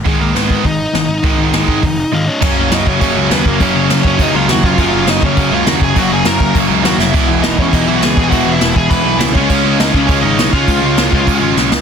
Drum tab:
CC |--------|--------|x-x-x-x-|x-x-x-x-|
HH |o-o-o-o-|o-o-o---|--------|--------|
SD |--o---o-|--o-----|--o---o-|--o---o-|
BD |o--oo---|o--oo---|o--oo--o|o--oo--o|

CC |x-x-x-x-|x-x-x-x-|x-x-x-x-|x-x-x-x-|
HH |--------|--------|--------|--------|
SD |--o---o-|--o---oo|--o---o-|--o---o-|
BD |o--oo--o|o--oo---|o--oo--o|o--oo--o|

CC |x-x-x-x-|x-x-x---|
HH |--------|--------|
SD |--o---o-|--o---oo|
BD |o--oo--o|o--oo---|